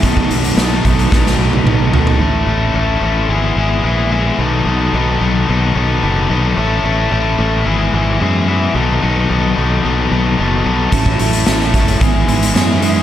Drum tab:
HH |x-xxx-xx--------|----------------|----------------|----------------|
SD |----o---oo------|----------------|----------------|----------------|
T1 |-----------o----|----------------|----------------|----------------|
T2 |------------o---|----------------|----------------|----------------|
FT |--------------oo|----------------|----------------|----------------|
BD |oo----o-o-------|----------------|----------------|----------------|

HH |----------------|x-xxx-xxx-xxx-x-|
SD |----------------|----oo------o---|
T1 |----------------|----------------|
T2 |----------------|----------------|
FT |----------------|----------------|
BD |----------------|oo----o-o-------|